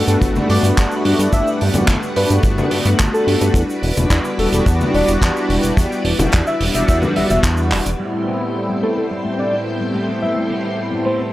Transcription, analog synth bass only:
0.08 G2
0.21 G1
0.50 G2
0.63 G2
0.78 G1
1.05 G2
1.19 G2
1.33 G1
1.62 G2
1.75 G2
1.88 G1
2.16 G2
2.30 G2
2.44 G1
2.72 G2
2.85 G2
3.00 G1
3.27 G2
3.41 G2
3.54 E2
3.83 E1
3.97 E1
4.10 E2
4.38 E1
4.52 E1
4.66 E2
4.94 E1
5.08 E1
5.22 E2
5.49 E1
5.64 E1
5.77 E2
6.05 E1
6.19 E1
6.34 E2
6.61 E1
6.75 E1
6.89 E2
7.17 E1
7.30 E1
7.43 E2
7.72 E1
7.86 E1

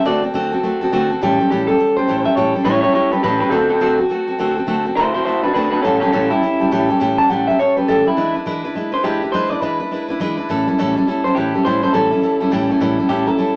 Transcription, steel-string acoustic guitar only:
0.05 D3 A3 C4 F#4 A4
0.22 C4 F#4 A4
0.34 D3 A3 C4 F#4 A4
0.52 C4 F#4 A4
0.63 A3 C4 F#4 A4
0.81 C4 F#4 A4
0.92 D3 A3 C4 F#4 A4
1.10 C4 F#4 A4
1.21 A2 E3 G3 C#4 G4 A4
1.39 G3 C#4 G4 A4
1.50 A2 E3 G3 C#4 G4 A4
1.68 G3 C#4 G4 A4
1.78 G3 C#4 G4 A4
1.97 G3 C#4 G4 A4
2.08 A2 E3 G3 C#4 G4 A4
2.24 G3 C#4 G4 A4
2.36 A2 E3 G3 C#4 G4 A4
2.54 G3 C#4 G4 A4
2.64 A2 E3 G3 C#4 G4 A4
2.83 G3 C#4 G4 A4
2.94 G3 C#4 G4 A4
3.11 G3 C#4 G4 A4
3.23 A2 E3 G3 C#4 G4 A4
3.40 G3 C#4 G4 A4
3.51 D3 A3 C4 F#4 A4
3.69 C4 F#4 A4
3.80 D3 A3 C4 F#4 A4
3.98 C4 F#4 A4
4.09 A3 C4 F#4 A4
4.27 C4 F#4 A4
4.39 D3 A3 C4 F#4 A4
4.57 C4 F#4 A4
4.67 D3 A3 C4 F#4 A4
4.85 C4 F#4 A4
4.97 D3 A3 C4 F#4 A4
5.14 C4 F#4 A4
5.26 A3 C4 F#4 A4
5.43 C4 F#4 A4
5.55 D3 A3 C4 F#4 A4
5.73 C4 F#4 A4
5.84 A2 E3 G3 C#4 G4 A4
6.02 G3 C#4 G4 A4
6.13 A2 E3 G3 C#4 G4 A4
6.30 G3 C#4 G4 A4
6.42 G3 C#4 G4 A4
6.60 G3 C#4 G4 A4
6.71 A2 E3 G3 C#4 G4 A4
6.89 G3 C#4 G4 A4
7.00 A2 E3 G3 C#4 G4 A4
7.18 G3 C#4 G4 A4
7.29 A2 E3 G3 C#4 G4 A4
7.48 G3 C#4 G4 A4
7.59 G3 C#4 G4 A4
7.77 G3 C#4 G4 A4
7.88 A2 E3 G3 C#4 G4 A4
8.05 G3 C#4 G4 A4
8.17 E3 G#3 D4 E4 B4
8.34 D4 E4 B4
8.46 E3 G#3 D4 E4 B4
8.64 D4 E4 B4
8.75 G#3 D4 E4 B4
8.92 D4 E4 B4
9.03 E3 G#3 D4 E4 B4
9.22 D4 B4
9.33 E3 G#3 D4 E4 B4
9.50 D4 E4 B4
9.62 E3 G#3 D4 E4 B4
9.80 D4 E4 B4
9.91 G#3 D4 E4 B4
10.08 D4 E4 B4
10.20 E3 G#3 D4 E4 B4
10.37 D4 E4 B4
10.49 A2 E3 G3 C#4 E4 A4
10.67 G3 C#4 E4 A4
10.78 A2 E3 G3 C#4 E4 A4
10.96 G3 C#4 E4 A4
11.07 G3 C#4 E4 A4
11.25 G3 C#4 E4 A4
11.36 A2 E3 G3 C#4 E4 A4
11.54 G3 C#4 E4 A4
11.65 A2 E3 G3 C#4 E4 A4
11.83 G3 C#4 E4 A4
11.93 A2 E3 G3 C#4 E4 A4
12.11 G3 C#4 E4 A4
12.22 G3 C#4 E4 A4
12.40 G3 C#4 E4 A4
12.51 A2 E3 G3 C#4 E4 A4
12.70 G3 C#4 E4 A4
12.80 A2 E3 G3 C#4 E4 A4
12.98 G3 C#4 E4 A4
13.08 A2 E3 G3 C#4 E4 A4
13.26 G3 C#4 E4 A4
13.38 G3 C#4 E4 A4

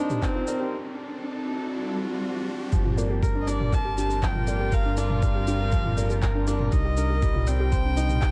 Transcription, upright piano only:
Already playing: G3 C4 D#4 A#4 C5
0.23 D#4
0.48 A#4
2.73 F3
2.98 A#3
3.23 A#4
3.47 D4
3.73 D4
3.98 G4
4.23 F3
4.47 A#3
4.73 A#4
4.98 D4
5.22 D4
5.48 G4
5.73 F3
5.98 A#3
6.23 A#4
6.47 D4
6.73 D#4
6.98 A#4
7.23 G3
7.48 C4
7.72 C5
7.97 D#4
8.22 D#4

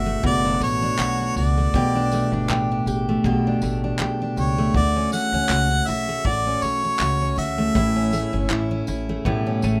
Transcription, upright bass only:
Already playing: G1
0.23 F#1
0.61 A1
0.98 B1
1.36 C#2
1.74 B1
2.32 G1
2.49 A1
2.86 A1
3.24 B1
3.62 A1
4.00 B1
4.37 C#2
4.74 D2
5.32 D2
5.50 C#2
5.88 B1
6.25 A1
6.62 B1
7.00 C#2
7.37 D2
7.75 A1
8.33 G1
8.50 A1
8.88 A1
9.25 B1
9.63 A1

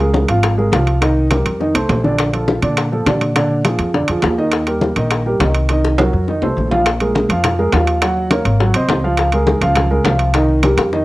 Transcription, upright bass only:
Already playing: C#2
0.28 G#1
0.72 C2
1.45 F2
1.74 C2
1.89 A#1
2.62 A#2
3.06 A#2
3.79 F2
4.09 F2
4.23 D#2
4.96 A#1
5.40 C2
6.13 F2
6.42 C2
6.57 A#1
7.29 F2
7.73 D#2
8.45 G#1
8.75 C2
8.88 C#2
9.61 C#2
10.04 C2
10.77 F2

